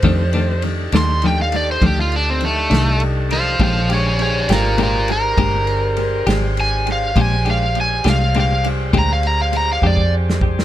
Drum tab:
RD |x-x-x-x-x-x-x-x-x-x-x-x-|x-x-x-x-x-x-x-x-x-x-x-x-|x-x-x-x-x-x-x-x-x-------|
SD |------o-----------o-----|------o-----------o-----|------o--------------o-o|
BD |o-----------o-----------|o-----------o-----------|o-----------o-----oo--o-|